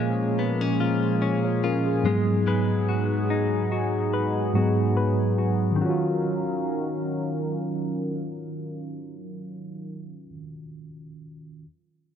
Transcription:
Already playing: A#2 F3 G#3 A#3 C#4 F4 G#4
0.39 B3
0.61 C#4
0.80 F4
1.22 C#4
1.44 F4 C#5
1.64 C#4 F4 A#4
1.87 G#4
2.03 G#2 F#3 G#3 B3 D#4
2.07 G#4
2.47 G#3 B4
2.89 F#4
3.30 D#4
3.72 F#4
4.14 B4
4.53 G#2 F#3 B3 F#4
4.58 G#4
4.97 B4
5.38 F#4
5.71 D#3
5.76 D#3 C#4
5.80 D#3 F#3 C#4 F4 A#4 F5
5.86 C#4 F#4
5.90 F4

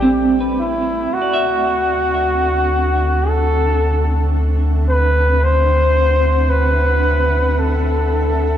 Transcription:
Already playing: A1 G3 A3 C4 D4 G4 A4 A5
0.02 C4
0.41 B4
0.60 E4
1.14 D2 D4 F#4
1.22 D5
1.34 E5
2.54 E5
3.28 A4
3.91 F#5
4.89 B4
5.43 C5
6.49 B4
7.59 A4

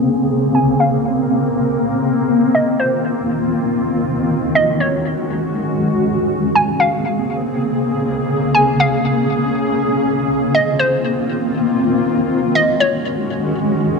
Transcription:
Already playing: C#3 A#3 C4
0.05 A#4
0.55 G#5
0.80 F5
2.05 D#3 F4
2.55 D#5
2.80 C5
4.05 G#3 C#4 F#4
4.55 D#5
4.80 C#5
6.05 C#3 A#3 C4 G#4
6.55 G#5
6.80 F5
8.05 C#4
8.55 G#5
8.80 F5
10.05 D#3 A#3 C4 F4
10.55 D#5
10.79 C5
12.05 D#3 G#3 C#4 F#4
12.55 D#5
12.80 C#5

